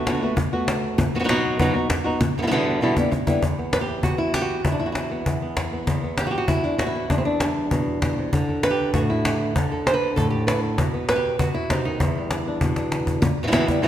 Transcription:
0.07 D3 A3 B3 F#4, cajon slap
0.22 A3 B3 F#4
0.36 muted nylon-string guitar stroke, cajon bass
0.53 A3 B3 F#4, cajon slap
0.68 cajon slap
0.98 muted nylon-string guitar stroke, cajon bass
1.14 F#3 B3 D#4 F#4, cajon slap
1.19 F#3 B3 D#4 F#4
1.24 F#3 B3 D#4 F#4
1.29 B2 F#3 B3 D#4 F#4, cajon slap
1.59 B2 F#3 B3 D#4 F#4, cajon bass
1.74 B3 D#4 F#4
1.89 muted nylon-string guitar stroke, cajon bass, cajon slap
2.04 B3 D#4 F#4
2.21 muted nylon-string guitar stroke, cajon bass
2.36 B2 D3 G3 B3 E4, cajon slap
2.42 B2 D3 G3 B3 E4
2.47 B2 D3 G3 B3 E4
2.51 E2 B2 D3 G3 B3 E4, cajon slap
2.81 E2 B2 D3 G3 B3 E4
2.97 D3 G3 B3 E4, cajon bass
3.11 muted nylon-string guitar stroke, cajon bass
3.27 D3 G3 B3 E4, cajon bass
3.42 E2, cajon bass
3.59 B3
3.73 B4, cajon slap
3.81 G4
3.89 E4
4.03 E2 F#4, cajon bass
4.18 E4
4.34 G4, cajon slap
4.42 F#4
4.50 cajon slap
4.65 E2 E4, cajon bass
4.72 D4
4.80 E4, cajon slap
4.86 F#4
4.92 E4, cajon slap
5.11 B3
5.26 E2, cajon bass
5.41 B3, cajon slap
5.57 cajon bass, cajon slap
5.73 B3
5.87 E2, cajon bass
6.04 B3
6.18 G4, cajon slap
6.27 F#4
6.31 G4
6.38 F#4
6.48 E2 E4, cajon bass
6.64 D4
6.78 F#4, cajon slap
6.87 E4
6.95 B3
7.10 E2 D4, cajon bass
7.18 C4
7.25 D4, cajon slap
7.40 G3, cajon slap
7.71 B2, cajon bass
7.87 cajon slap
8.02 B2, cajon bass, cajon slap
8.18 C3, cajon slap
8.33 D3, cajon bass
8.49 A4
8.63 B4, cajon slap
8.71 G4
8.94 A2 F#4, cajon bass
9.10 E4
9.25 G4, cajon slap
9.56 D3, cajon bass
9.71 A4, cajon slap
9.87 C5, cajon slap
9.94 B4
10.16 A2 A4, cajon bass
10.30 G4, cajon slap
10.47 B4, cajon slap
10.64 A4, cajon slap
10.78 B2, cajon bass
10.94 B3, cajon slap
11.09 B4, cajon slap
11.16 G4
11.39 B2 F#4, cajon bass
11.54 E4
11.70 C3 D#4, cajon bass, cajon slap
11.85 D#3 D#4, cajon slap
12.00 E2 E4, cajon bass
12.16 G3, cajon slap
12.31 cajon slap
12.48 D4
12.61 B2, cajon bass
12.76 D4, cajon slap
12.92 cajon slap
13.07 cajon bass
13.22 muted nylon-string guitar stroke, cajon bass
13.38 cajon slap
13.43 B2 E3 G3 B3 E4
13.47 B2 E3 G3 B3 E4
13.52 E2 B2 E3 G3 B3 E4, cajon slap
13.67 E3 G3 B3 E4, cajon bass
13.82 E2 B2 E3 G3 B3 E4

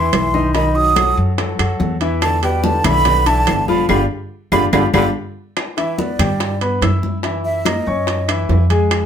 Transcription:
Already playing: E3 E4 E5 C6
0.13 B1, high bongo, low bongo, high conga, high timbale, low timbale, claves
0.34 D#3 D#4 D#5, high bongo, high conga
0.54 D#3 D#4 D#5 B5, high bongo, high conga, high timbale
0.75 F#3 D#6, high bongo, high conga
0.96 F#3 F#4 A4, high bongo, high conga, high timbale, claves
1.17 F#2, high conga
1.38 F#3 F#4 A4, high bongo, high conga, high timbale
1.59 F#2 F#3 F#4 A4, high bongo, high conga, high timbale, claves
1.80 E2, high bongo, low bongo, high conga
2.01 E3 E4 E5, high bongo, high timbale
2.22 D3 A5, high bongo, high conga, high timbale, claves
2.42 B2 G3 G4 B4 G5, high bongo, high conga, high timbale
2.64 D3 A5, high bongo, high conga
2.84 B1 D3 E3 E4 E5 B5, high conga, low conga, high timbale, claves
3.05 G3 G4 B4, high bongo, high conga, low conga, high timbale
3.26 D3 E3 E4 E5 A5, high bongo, high conga, high timbale
3.47 G1, high bongo, low bongo, high conga, high timbale, low timbale, claves
3.68 D3 F3 F4 F5 B5, high bongo, high conga
3.89 G1 D3 D4 F4 G4 B5, low bongo, high conga, high timbale, claves
4.52 G1 D3 D4 F4 G4 B5, low bongo, high conga, high timbale, claves
4.73 G1 D3 D4 F4 G4 B5, low bongo, high conga, high timbale, claves
4.94 G1 D3 D4 F4 G4 B5, low bongo, high conga, high timbale, claves
5.57 high bongo, high conga, high timbale, claves
5.77 E3 E4 E5, high bongo, high conga, high timbale
5.98 B3 B4 D5 B5, high bongo, high conga
6.19 G2 G3 G4 G5, high conga, low conga, high timbale, claves
6.40 high bongo, high conga, high timbale
6.61 B3 B4 B5, high bongo, high conga, high timbale
6.82 F#2 E4 E5 E6, high bongo, low bongo, high conga, high timbale, low timbale, claves
7.03 high bongo, high conga
7.23 E3 E4 E5, high bongo, high conga, high timbale
7.45 E5, high bongo, high conga
7.65 A#3 A#4 D#5 A#5, high bongo, high conga, high timbale, claves
7.87 F#2 C#4 C#5 C#6, high conga
8.07 high bongo, high conga, high timbale
8.28 E3 E4 E5, high bongo, high conga, high timbale, claves
8.49 F2, high bongo, low bongo, high conga, low timbale
8.70 G#3 G#4 G#5, high bongo, high conga, high timbale
8.91 high bongo, high conga, high timbale, claves

